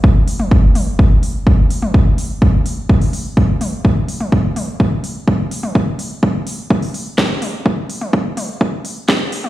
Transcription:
\new DrumStaff \with { instrumentName = "Drums" } \drummode { \time 4/4 \tempo 4 = 126 bd8 hho16 toml16 bd8 <hho toml>8 bd8 hho8 bd8 hho16 toml16 | bd8 hho8 bd8 hho8 bd16 hho16 hho8 bd8 <hho toml>8 | bd8 hho16 toml16 bd8 <hho toml>8 bd8 hho8 bd8 hho16 toml16 | bd8 hho8 bd8 hho8 bd16 hho16 hho8 <bd sn>8 <hho toml>8 |
bd8 hho16 toml16 bd8 <hho toml>8 bd8 hho8 <bd sn>8 hho16 toml16 | }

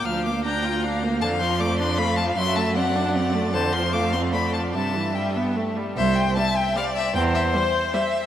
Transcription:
<<
  \new Staff \with { instrumentName = "Violin" } { \time 3/4 \key bes \lydian \tempo 4 = 153 f'''8 d'''8 bes''4. r8 | \key c \major a''8 c'''8 d'''8 c'''8 b''8 a''8 | c'''8 a''8 fis''4. r8 | a''8 c'''8 d'''8 c'''8 b''8 a''8 |
a''4 g''4 r4 | e''8 g''8 a''8 g''8 f''8 e''8 | g''8 e''8 c''4. r8 | }
  \new Staff \with { instrumentName = "Violin" } { \time 3/4 \key bes \lydian f''4 g''4 f''4 | \key c \major f''4 d''4 f''4 | e''4 d''4 d''4 | c''4 f''4 d''4 |
e''2~ e''8 r8 | c''4 e''4 d''4 | c''2 e''4 | }
  \new Staff \with { instrumentName = "Viola" } { \time 3/4 \key bes \lydian f8 bes8 d'8 f'8 d'8 bes8 | \key c \major d8 f8 a8 d'8 a8 f8 | fis8 a8 c'8 d'8 c'8 a8 | d8 f8 a8 c'8 a8 f8 |
c8 e8 g8 b8 a8 g8 | r4 g4 g4 | r4 g4 g4 | }
  \new Staff \with { instrumentName = "Cello" } { \clef bass \time 3/4 \key bes \lydian d,2. | \key c \major f,2. | fis,2. | f,2. |
g,2~ g,8 r8 | c,4 r2 | e,4 r2 | }
>>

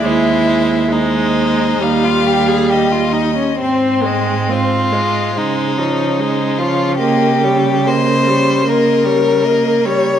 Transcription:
<<
  \new Staff \with { instrumentName = "Violin" } { \time 4/4 \key aes \major \tempo 4 = 70 c''4 c''4 f''4 ees''4 | c''8 ees''8 c''8 ees''8 c''8 des''8 c''8 des''8 | ees''8 des''8 ees''8 des''8 ees''8 des''8 ees''8 des''8 | }
  \new Staff \with { instrumentName = "Violin" } { \time 4/4 \key aes \major fes'4 ees'4~ ees'16 f'16 g'16 aes'16 g'16 f'16 ees'16 des'16 | c'4 f'4 ees'4. f'8 | g'4 c''4 bes'4. des''8 | }
  \new Staff \with { instrumentName = "Viola" } { \clef bass \time 4/4 \key aes \major aes4 aes4 g4.~ g16 r16 | c'8 aes8 c'8 aes8 aes8 f8 aes8 f8 | bes8 g8 bes8 g8 bes8 g8 bes8 g8 | }
  \new Staff \with { instrumentName = "Cello" } { \clef bass \time 4/4 \key aes \major ees,2 ees,4.~ ees,16 r16 | aes,2 des2~ | des1 | }
>>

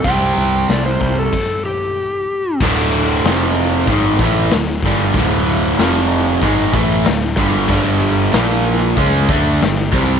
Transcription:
<<
  \new Staff \with { instrumentName = "Electric slide guitar" } { \time 4/4 \key d \minor \tempo 4 = 94 g''4 d''16 c''8 a'8. g'4. | r1 | r1 | r1 | }
  \new Staff \with { instrumentName = "Overdriven electric guitar" } { \clef bass \time 4/4 \key d \minor <c g c'>2 r2 | <d, a, d>4 <f, c f>4 <gis, ees gis>8 <a, e a>8 <d, a,>8 <g, d g>8 | <d, a, d>4 <f, c f>4 <gis, ees gis>8 <a, e a>8 <d, a,>8 <g, d g>8 | <g, d g>4 <bes, f bes>4 <cis gis cis'>8 <d a d'>8 <g, d>8 <c g c'>8 | }
  \new Staff \with { instrumentName = "Picked electric bass" } { \clef bass \time 4/4 \key d \minor c,8 c,8 c,8 c,8 r2 | d,,4 f,,4 gis,,8 a,,8 d,,8 g,,8 | d,,4 f,,4 gis,,8 a,,8 d,,8 g,,8 | g,,4 bes,,4 cis,8 d,8 g,,8 c,8 | }
  \new DrumStaff \with { instrumentName = "Drums" } \drummode { \time 4/4 <hho bd>8 hho8 <hho sn>8 <hho bd>8 <cymc bd>4 r4 | <cymc bd>4 <hho sn>4 <hho bd>8 bd8 <hho sn>8 bd8 | <hho bd>4 <hho sn>4 <hho bd>8 bd8 <hho sn>8 bd8 | <cymc bd>4 <hho sn>4 <hho bd>8 bd8 <hho sn>8 bd8 | }
>>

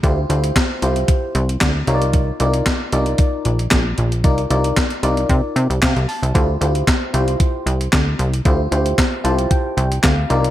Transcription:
<<
  \new Staff \with { instrumentName = "FM electric piano" } { \time 4/4 \key c \dorian \tempo 4 = 114 << { r1 | r1 | r2. f''8 a''8 | r1 |
r4. a''8 g''8 g''8 f''8 d''8 | } \\ { <e' f' g' c''>8 <e' f' g' c''>8 r8 <e' f' g' c''>4 r4 <ees' f' bes' cis'' d''>8~ | <ees' f' bes' cis'' d''>8 <ees' f' bes' d''>8 r8 <ees' f' bes' d''>4 r4. | <ees' f' bes' d''>8 <ees' f' bes' d''>8 r8 <ees' f' bes' d''>4 r4. | <e' f' g' c''>8 <e' f' g' c''>8 r8 <e' f' g' c''>4 r4. |
<e' f' g' c''>8 <e' f' g' c''>8 r8 <e' f' g' c''>4 r4 <ees' f' bes' d''>8 | } >> }
  \new Staff \with { instrumentName = "Analog synth bass" } { \clef bass \time 4/4 \key c \dorian d,8 d,8 r8 c,8 r8 c,8 d,8 c,8~ | c,8 c,8 r8 c,8 r8 bes,,8 bes,,8 bes,,8 | c,8 c,8 r8 c,8 c16 r16 c16 c,16 c16 c,16 r16 c,16 | d,8 d,8 r8 c,8 r8 c,8 d,8 c,8 |
d,8 d,8 r8 c,8 r8 c,8 d,8 c,8 | }
  \new DrumStaff \with { instrumentName = "Drums" } \drummode { \time 4/4 <hh bd>8 hh16 hh16 <hc hh bd sn>8 hh16 hh16 <hh bd>8 hh16 hh16 <hc hh bd sn>8 hh16 hh16 | <hh bd>8 hh16 hh16 <hc hh bd sn>8 hh16 hh16 <hh bd>8 hh16 hh16 <hc hh bd sn>8 hh16 hh16 | <hh bd>16 hh16 hh16 hh16 <hc hh bd sn>16 hh16 hh16 hh16 <hh bd>8 hh16 hh16 <hc hh bd sn>16 hh16 hho16 hh16 | <hh bd>8 hh16 hh16 <hc hh bd sn>8 hh16 hh16 <hh bd>8 hh16 hh16 <hc hh bd sn>8 hh16 hh16 |
<hh bd>8 hh16 hh16 <hc hh bd sn>8 hh16 hh16 <hh bd>8 hh16 hh16 <hc hh bd sn>8 hh16 hh16 | }
>>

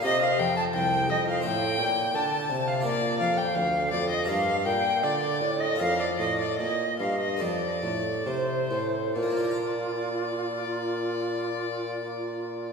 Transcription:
<<
  \new Staff \with { instrumentName = "Flute" } { \time 4/4 \key bes \major \tempo 4 = 77 ees''16 f''16 g''16 a''16 g''8 ees''16 f''16 g''4 a''8. f''16 | d''8 f''16 g''16 f''8 d''16 ees''16 f''8 g''8 d''8. ees''16 | f''16 d''16 ees''16 d''16 ees''8 f''16 ees''16 d''8. r16 c''4 | f'1 | }
  \new Staff \with { instrumentName = "Violin" } { \time 4/4 \key bes \major ees''16 f''16 g''16 a''16 g''8 ees''16 f''16 g''4 a''8. f''16 | d''8 f''16 g''16 f''8 d''16 ees''16 f''8 g''8 d''8. ees''16 | f''16 d''16 ees''16 d''16 ees''8 f''16 ees''16 d''4 c''4 | d''1 | }
  \new Staff \with { instrumentName = "Harpsichord" } { \time 4/4 \key bes \major <ees' g' c''>2 <c' f' c''>2 | <d' f' bes'>2 <d' g' bes'>2 | <f' bes' c''>2 <ees' a' c''>2 | <bes, bes d' f' bes' f''>1 | }
  \new Staff \with { instrumentName = "Harpsichord" } { \clef bass \time 4/4 \key bes \major c8 f,8 c,8 f,8 a,8 bes,8 d8 c8 | bes,8 f,8 d,8 f,8 g,8 bes,8 d8 a,8 | f,8 a,8 bes,8 g,8 f,8 a,8 c8 a,8 | r1 | }
  \new Staff \with { instrumentName = "Bassoon" } { \clef bass \time 4/4 \key bes \major c8 f,8 c,8 f,8 a,8 bes,8 d8 c8 | bes,8 f,8 d,8 f,8 g,8 bes,8 d8 a,8 | f,8 a,8 bes,8 g,8 f,8 a,8 c8 a,8 | bes,1 | }
>>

